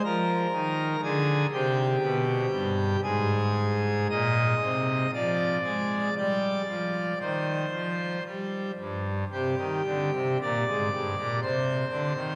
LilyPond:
<<
  \new Staff \with { instrumentName = "Pipe organ" } { \time 3/4 \key c \minor \tempo 4 = 58 bes'4 aes'8 g'4. | aes'4 ees''4 d''4 | d''4 c''4 r4 | g'4 d''4 c''4 | }
  \new Staff \with { instrumentName = "Pipe organ" } { \clef bass \time 3/4 \key c \minor f8 ees8 d8 c8 b,8 g,8 | aes,4 bes,8 c8 f8 aes8 | g8 f8 ees8 f8 g8 g,8 | c16 ees16 d16 c16 bes,16 aes,16 g,16 bes,16 c8 d16 ees16 | }
>>